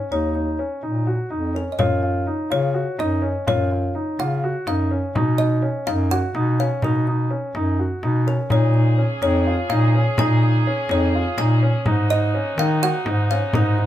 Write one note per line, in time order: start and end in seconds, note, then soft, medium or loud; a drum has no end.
0.00 0.11 C#5 medium
0.11 0.66 D#2 medium
0.11 0.33 D#4 medium
0.11 1.28 C#5 medium
0.35 0.57 D#4 medium
0.59 0.81 C#4 medium
0.83 1.20 A#2 medium
0.83 1.04 D#4 medium
1.07 1.29 F#4 medium
1.30 1.68 F2 medium
1.30 1.52 D#4 medium
1.55 1.76 C#4 medium
1.55 1.73 A#4 medium
1.72 1.79 D#5 soft
1.79 2.34 F#2 medium
1.79 2.01 F4 medium
1.79 2.50 C#5 medium
1.79 frame drum medium
2.03 2.25 F4 medium
2.27 2.49 D#4 medium
2.50 2.88 C#3 medium
2.50 2.72 F4 medium
2.50 3.01 C#5 medium
2.50 frame drum soft
2.74 2.96 F#4 medium
2.98 3.36 F#2 medium
2.98 3.20 D#4 medium
2.98 3.44 D#5 medium
2.98 frame drum soft
3.22 3.44 C#4 medium
3.47 4.03 F#2 medium
3.47 3.69 F4 medium
3.47 3.92 C#5 medium
3.47 frame drum medium
3.71 3.93 F4 medium
3.95 4.17 D#4 medium
4.19 4.56 C#3 medium
4.19 4.41 F4 medium
4.19 4.69 F#5 medium
4.19 frame drum soft
4.44 4.65 F#4 medium
4.67 5.04 F#2 medium
4.67 4.89 D#4 medium
4.67 5.01 F5 medium
4.67 frame drum soft
4.91 5.13 C#4 medium
5.15 5.71 B2 medium
5.15 5.37 D#4 medium
5.15 frame drum medium
5.38 5.61 D#4 medium
5.38 5.88 D#5 medium
5.62 5.84 C#4 medium
5.87 6.24 F#2 medium
5.87 6.08 D#4 medium
5.87 5.98 F5 medium
5.87 frame drum soft
6.11 6.33 F#4 medium
6.11 6.56 F#5 medium
6.35 6.72 B2 medium
6.35 6.57 D#4 medium
6.35 frame drum soft
6.60 6.81 C#4 medium
6.60 6.84 F5 medium
6.82 7.38 B2 medium
6.82 7.04 D#4 medium
6.82 7.52 A#4 medium
6.82 frame drum soft
7.07 7.29 D#4 medium
7.31 7.52 C#4 medium
7.55 7.92 F#2 medium
7.55 7.77 D#4 medium
7.55 frame drum soft
7.79 8.01 F#4 medium
8.03 8.40 B2 medium
8.03 8.25 D#4 medium
8.03 frame drum soft
8.27 8.48 C#4 medium
8.27 8.52 A#4 medium
8.27 frame drum soft
8.50 9.06 A#2 medium
8.50 11.83 C#3 medium
8.50 13.86 A#3 medium
8.50 8.72 D#4 medium
8.50 11.82 G#4 medium
8.50 9.21 C#5 medium
8.50 frame drum medium
8.74 8.96 D#4 medium
8.98 9.20 C#4 medium
9.22 9.59 F2 medium
9.22 9.44 D#4 medium
9.22 9.72 C#5 medium
9.22 frame drum soft
9.47 9.68 F4 medium
9.70 10.07 A#2 medium
9.70 9.92 D#4 medium
9.70 10.20 F5 medium
9.70 frame drum soft
9.95 10.16 C#4 medium
10.18 10.73 A#2 medium
10.18 10.40 D#4 medium
10.18 10.63 G#5 medium
10.18 frame drum medium
10.43 10.64 D#4 medium
10.67 10.88 C#4 medium
10.89 11.27 F2 loud
10.89 11.12 D#4 medium
10.89 11.35 C#5 medium
10.89 frame drum soft
11.15 11.36 F4 medium
11.37 11.74 A#2 medium
11.37 11.60 D#4 medium
11.37 11.72 G#5 medium
11.37 frame drum soft
11.63 11.84 C#4 medium
11.86 12.41 G#2 medium
11.86 13.86 C3 medium
11.86 12.07 D#4 medium
11.86 13.86 D#4 medium
11.86 13.86 F#4 medium
11.86 frame drum medium
12.10 12.32 D#4 medium
12.10 12.60 D#5 medium
12.34 12.55 C#4 medium
12.57 12.94 D#3 medium
12.57 12.80 D#4 medium
12.57 12.81 F5 medium
12.57 frame drum medium
12.82 13.04 F#4 medium
12.82 13.32 F#5 loud
13.06 13.43 G#2 medium
13.06 13.27 D#4 medium
13.06 frame drum medium
13.30 13.51 C#4 medium
13.30 13.41 F5 medium
13.53 13.86 G#2 medium
13.53 13.75 D#4 medium
13.53 13.86 A#4 medium
13.53 frame drum medium
13.78 13.86 D#4 medium
13.78 frame drum soft